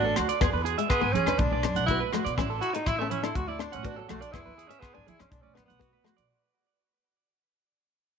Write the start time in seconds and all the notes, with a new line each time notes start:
Already playing: A1 D4
0.03 A4, high conga
0.16 D2 F#4, cross-stick, closed hi-hat, low agogo
0.29 D5, closed hi-hat
0.41 E2 B3 G#4, kick, cross-stick, closed hi-hat, low agogo
0.53 E2 B4
0.65 G#4, closed hi-hat
0.78 G#3 E5, closed hi-hat
0.89 B3 G#4, kick, cross-stick, closed hi-hat, low agogo
1.01 G#2 B3 G#5
1.13 E3 C#4 G#4, closed hi-hat, low conga
1.26 E2 D4 B4, cross-stick, closed hi-hat, low agogo
1.38 B1 D4, kick, closed hi-hat, high conga
1.51 B1 D5
1.63 F#2, muted nylon-string guitar stroke, cross-stick, closed hi-hat, low agogo
1.75 B1 F#5, closed hi-hat, high conga
1.86 E4 F#4, kick, closed hi-hat
1.91 B3
2.00 B4, high conga
2.12 A3 F#4, cross-stick, closed hi-hat, low conga, low agogo
2.25 B2 D5, closed hi-hat
2.38 A1 C#4 E4, kick, cross-stick, closed hi-hat, low agogo
2.50 A4
2.61 E4 F#4, closed hi-hat
2.73 D#4, muted clean electric guitar stroke, muted nylon-string guitar stroke, closed hi-hat
2.86 A1 E4, kick, cross-stick, closed hi-hat, low agogo
2.99 A3 C#4 E5
3.10 C#4 E4, closed hi-hat, low conga
3.23 D4 E4 A4, cross-stick, closed hi-hat, low agogo
3.35 D2 F#4, kick, closed hi-hat, high conga
3.48 E4 D5, high conga
3.59 D4, cross-stick, closed hi-hat, low agogo
3.72 A1 C#4 F#5, closed hi-hat, high conga
3.83 B3 F#4, kick, closed hi-hat
3.87 D4
3.96 F#3 A4, high conga
4.09 B1 A3 F#4, cross-stick, closed hi-hat, low conga, low agogo
4.21 D4 D5, closed hi-hat
4.32 E2 B3 E4 G#4, kick, cross-stick, closed hi-hat, low agogo
4.45 E2 B4
4.58 G#4, closed hi-hat
4.67 C#4 E5, muted nylon-string guitar stroke, closed hi-hat
4.80 B3 G#4, kick, cross-stick, closed hi-hat, low agogo
4.94 G#2 B3 D4 G#5
5.07 E3 E4 G#4, closed hi-hat, low conga
5.19 E2 C#4 D4, muted clean electric guitar stroke, cross-stick, closed hi-hat, low agogo
5.31 B1 D4, kick, closed hi-hat, high conga
5.42 B1 C#4 D5, high conga
5.55 F#2 B3 D4, cross-stick, closed hi-hat, low agogo
5.65 B3 F#5, high conga
5.70 B1, closed hi-hat
5.79 B3 F#4, kick, closed hi-hat
5.93 B4, high conga
6.04 A3 F#4, cross-stick, closed hi-hat, low conga, low agogo
6.17 B2 D5, closed hi-hat